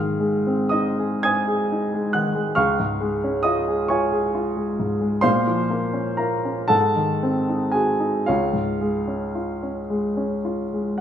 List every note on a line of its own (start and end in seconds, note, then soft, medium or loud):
0.00 2.53 G#2 medium
0.00 0.37 D#3 soft
0.00 0.69 F5 medium
0.00 0.72 F6 medium
0.20 0.63 G#3 soft
0.47 0.90 C4 soft
0.69 1.15 D#4 soft
0.69 1.20 D#5 soft
0.69 1.23 D#6 medium
0.99 1.39 G#4 soft
1.23 1.63 C5 soft
1.23 2.10 G#5 medium
1.23 2.10 D#6 medium
1.23 2.14 G#6 medium
1.48 1.84 G#4 soft
1.72 2.07 D#4 soft
1.94 2.28 G#3 soft
2.13 2.49 D#3 soft
2.13 2.54 F#5 medium
2.13 2.57 F#6 medium
2.35 2.57 G#3 soft
2.55 5.21 C#2 medium
2.55 3.42 F5 medium
2.55 3.42 C#6 medium
2.55 3.46 F6 medium
2.80 3.15 G#2 soft
3.01 3.37 G#3 soft
3.24 3.60 C#4 soft
3.43 3.82 F4 soft
3.43 3.87 D#5 medium
3.43 3.90 D#6 medium
3.68 4.05 G#4 soft
3.88 4.27 F4 soft
3.88 4.32 C#5 medium
3.88 4.32 G#5 medium
3.88 4.35 C#6 medium
4.12 4.49 G#4 soft
4.35 4.71 F4 soft
4.56 4.93 G#3 soft
4.79 5.16 G#2 soft
5.01 5.24 G#3 soft
5.21 6.65 A#2 medium
5.21 6.14 C5 medium
5.21 6.14 F5 medium
5.21 6.17 C6 medium
5.47 5.85 F3 soft
5.70 6.09 A#3 soft
5.93 6.33 C#4 soft
6.17 6.59 F4 soft
6.17 6.66 A#4 soft
6.17 6.69 A#5 medium
6.45 6.70 C#4 soft
6.68 8.26 G#2 soft
6.68 7.71 A4 medium
6.68 7.72 F#5 medium
6.68 7.75 A5 medium
6.96 7.39 D#3 soft
7.23 7.66 C4 soft
7.49 7.92 D#4 soft
7.72 8.18 F#4 soft
7.72 8.25 G#4 soft
7.72 8.27 G#5 medium
8.00 8.28 D#4 soft
8.26 11.01 C#2 medium
8.26 9.34 F4 medium
8.26 10.98 C#5 medium
8.26 11.01 F5 medium
8.53 8.98 G#2 soft
8.81 9.25 G#3 soft
9.08 9.52 C#4 soft
9.35 9.79 F4 soft
9.63 10.07 C#4 soft
9.90 10.35 G#3 soft
10.17 10.63 C#4 soft
10.45 10.91 F4 soft
10.74 11.01 G#3 soft
10.98 11.01 F#5 medium